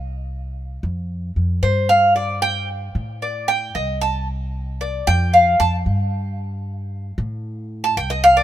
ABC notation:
X:1
M:4/4
L:1/16
Q:1/4=114
K:Cdor
V:1 name="Cuban tres"
z12 c2 f2 | d2 g2 z4 d2 g2 e2 a2 | z4 d2 g2 f2 a2 z4 | z8 z3 a g e f d |]
V:2 name="Upright bass" clef=bass
C,,6 F,,4 F,,2 G,,4- | G,,6 A,,6 C,,4- | C,,6 F,,4 F,,2 G,,4- | G,,6 A,,6 C,,4 |]